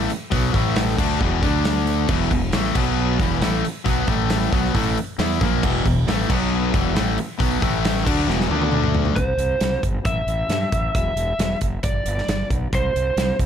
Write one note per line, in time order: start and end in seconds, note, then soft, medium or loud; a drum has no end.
0.00 0.10 A3 loud
0.09 muted fingered electric bass stroke soft
0.09 muted distorted electric guitar stroke medium
0.09 open hi-hat medium
0.31 0.53 B1 medium
0.31 0.54 B2 medium
0.31 0.54 F#3 loud
0.31 0.55 B3 loud
0.31 kick loud
0.31 open hi-hat medium
0.54 0.95 A1 medium
0.54 0.98 A2 medium
0.54 0.98 E3 medium
0.54 0.98 A3 loud
0.54 kick loud
0.54 open hi-hat medium
0.76 snare loud
0.76 open hi-hat medium
0.89 snare soft
0.98 1.19 D2 medium
0.98 1.20 D3 medium
0.98 1.20 A3 medium
0.98 1.21 D4 loud
0.98 kick loud
0.98 crash loud
1.20 1.41 E1 loud
1.20 1.42 E2 medium
1.20 1.42 B2 loud
1.20 1.42 E3 loud
1.20 kick loud
1.42 2.05 D2 loud
1.42 2.08 D3 loud
1.42 2.09 A3 loud
1.42 2.09 D4 loud
1.42 kick loud
1.42 open hi-hat medium
1.65 snare loud
1.65 open hi-hat medium
1.87 open hi-hat medium
2.09 2.29 E1 medium
2.09 2.31 E2 medium
2.09 2.31 B2 loud
2.09 2.31 E3 medium
2.09 kick loud
2.09 crash medium
2.31 2.52 E1 medium
2.31 2.49 E2 medium
2.31 2.49 B2 medium
2.31 kick medium
2.31 open hi-hat medium
2.53 2.74 A1 medium
2.53 2.75 A2 medium
2.53 2.75 E3 medium
2.53 2.75 A3 loud
2.53 snare loud
2.53 open hi-hat medium
2.65 snare soft
2.75 3.17 B1 loud
2.75 3.18 B2 medium
2.75 3.19 F#3 medium
2.75 3.20 B3 medium
2.75 kick loud
2.75 crash medium
3.19 3.40 E1 loud
3.19 3.41 E2 loud
3.19 3.41 B2 medium
3.19 3.41 E3 loud
3.19 kick loud
3.19 open hi-hat medium
3.41 3.62 A1 medium
3.41 3.63 A2 medium
3.41 3.64 E3 medium
3.41 3.64 A3 loud
3.41 snare loud
3.41 open hi-hat medium
3.64 muted distorted electric guitar stroke medium
3.64 muted fingered electric bass stroke soft
3.64 open hi-hat medium
3.85 4.07 B1 medium
3.85 4.07 B2 medium
3.85 4.07 F#3 loud
3.85 4.08 B3 loud
3.85 kick loud
3.85 open hi-hat medium
4.07 4.49 A1 medium
4.07 4.51 A2 medium
4.07 4.52 E3 medium
4.07 4.52 A3 medium
4.07 kick loud
4.07 open hi-hat medium
4.30 snare loud
4.30 open hi-hat medium
4.42 snare soft
4.52 4.73 B1 medium
4.52 4.74 B2 medium
4.52 4.74 F#3 medium
4.52 4.74 B3 medium
4.52 kick loud
4.52 open hi-hat medium
4.65 snare soft
4.74 4.95 A1 loud
4.74 4.96 A2 loud
4.74 4.96 E3 loud
4.74 4.97 A3 loud
4.74 kick loud
4.74 open hi-hat medium
4.97 open hi-hat medium
5.19 5.39 E2 medium
5.19 5.40 E3 loud
5.19 5.41 B3 medium
5.19 5.41 E4 medium
5.19 snare loud
5.19 open hi-hat medium
5.41 5.62 A#1 loud
5.41 5.63 A#2 medium
5.41 5.63 F3 medium
5.41 5.63 A#3 loud
5.41 kick loud
5.41 open hi-hat medium
5.63 5.84 E1 medium
5.63 5.85 E2 medium
5.63 5.85 B2 loud
5.63 5.86 E3 loud
5.63 kick loud
5.63 crash loud
5.85 6.06 E1 medium
5.85 6.03 E2 medium
5.85 6.04 B2 medium
5.85 kick medium
5.85 open hi-hat medium
6.07 6.28 A1 medium
6.07 6.29 A2 medium
6.07 6.30 E3 loud
6.07 6.30 A3 loud
6.07 snare loud
6.07 open hi-hat medium
6.29 6.71 B1 loud
6.29 6.73 B2 medium
6.29 6.73 F#3 medium
6.29 6.74 B3 medium
6.29 kick loud
6.29 crash loud
6.73 6.94 E1 medium
6.73 6.95 E2 medium
6.73 6.94 B2 loud
6.73 6.94 E3 loud
6.73 kick loud
6.73 open hi-hat medium
6.95 7.16 A1 medium
6.95 7.17 A2 medium
6.95 7.17 E3 loud
6.95 7.17 A3 loud
6.95 snare loud
6.95 open hi-hat medium
7.17 muted fingered electric bass stroke soft
7.17 muted distorted electric guitar stroke medium
7.17 open hi-hat medium
7.39 7.61 B1 medium
7.39 7.60 B2 medium
7.39 7.61 F#3 medium
7.39 7.62 B3 loud
7.39 kick loud
7.39 open hi-hat medium
7.61 8.03 A1 medium
7.61 8.04 A2 medium
7.61 8.04 E3 loud
7.61 8.04 A3 medium
7.61 kick loud
7.61 open hi-hat medium
7.85 snare loud
7.85 open hi-hat medium
7.98 snare soft
8.04 8.26 D2 loud
8.04 8.27 D3 medium
8.04 8.27 A3 medium
8.04 8.28 D4 loud
8.04 kick loud
8.04 crash loud
8.19 snare soft
8.27 8.48 E1 medium
8.27 8.49 E2 medium
8.27 8.49 B2 loud
8.27 8.49 E3 medium
8.27 snare medium
8.41 snare medium
8.49 9.12 D2 loud
8.49 9.16 D3 medium
8.49 9.16 A3 loud
8.49 9.17 D4 loud
8.49 high tom medium
8.62 high tom medium
8.72 mid tom medium
8.84 mid tom medium
8.95 floor tom loud
9.05 floor tom medium
9.16 9.31 C2 medium
9.16 9.79 C5 loud
9.16 kick loud
9.16 closed hi-hat medium
9.37 9.53 C2 medium
9.37 closed hi-hat medium
9.61 9.76 C2 medium
9.61 snare loud
9.61 closed hi-hat medium
9.83 9.98 G1 medium
9.83 kick medium
9.83 closed hi-hat medium
10.05 10.20 A1 medium
10.05 10.94 E5 medium
10.05 kick loud
10.05 closed hi-hat medium
10.27 10.42 A1 medium
10.27 closed hi-hat medium
10.49 10.64 G2 medium
10.49 snare loud
10.49 closed hi-hat medium
10.72 10.87 A1 medium
10.72 kick medium
10.72 closed hi-hat medium
10.95 11.09 E1 medium
10.95 11.58 E5 medium
10.95 kick loud
10.95 closed hi-hat medium
11.16 11.31 E1 medium
11.16 closed hi-hat medium
11.39 11.53 E1 medium
11.39 snare loud
11.39 closed hi-hat medium
11.61 11.76 F#1 medium
11.61 kick medium
11.61 closed hi-hat medium
11.83 11.98 G1 medium
11.83 12.46 D5 loud
11.83 kick loud
11.83 closed hi-hat medium
12.06 12.20 G1 medium
12.06 closed hi-hat medium
12.18 snare soft
12.28 12.43 G1 medium
12.28 snare loud
12.28 closed hi-hat medium
12.50 12.65 B1 medium
12.50 kick medium
12.50 closed hi-hat medium
12.73 12.87 C2 medium
12.73 13.36 C5 loud
12.73 kick loud
12.73 closed hi-hat medium
12.95 13.10 C2 medium
12.95 closed hi-hat medium
13.16 13.31 C2 medium
13.16 snare loud
13.16 closed hi-hat medium
13.39 13.46 C2 medium
13.39 kick medium
13.39 closed hi-hat medium